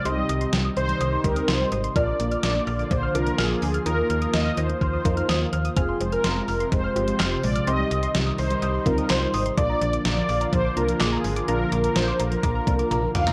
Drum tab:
HH |x-xxx-xxx-xxx-xx|x-xxx-oxx-xxx-ox|x-xxx-xxx-xxx-xx|x-xxx-oxx-xxx-ox|
CP |----------------|----------------|----------------|------------x---|
SD |----o-------o---|----o-------o---|----o-------o---|----o-------o---|
T1 |----------------|----------------|----------------|----------------|
T2 |----------------|----------------|----------------|----------------|
FT |----------------|----------------|----------------|----------------|
BD |----------o-----|o-------o-------|--------o-o-----|o-------o-------|

HH |x-xxx-oxx-xxx-ox|x-xxx-oxx-xxx-ox|x-xxx-xxx-xxx-xx|
CP |------------x---|------------x---|----------------|
SD |----o-------o---|----o-------o---|----o-----------|
T1 |----------------|----------------|------------o---|
T2 |----------------|----------------|--------------o-|
FT |----------------|----------------|---------------o|
BD |----------o-----|o-------o-------|--------o-o-----|